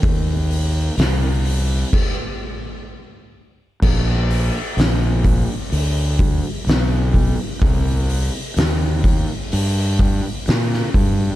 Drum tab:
CC |--------x-------|x---------------|----------------|
HH |o-o-o-o---------|--o-o-o-o-o-o-o-|o-o-o-o-o-o-o-o-|
SD |----o-----------|----o-------o---|----o-------oo--|
BD |o-------o-------|o-----o---o---o-|o-----o---o---o-|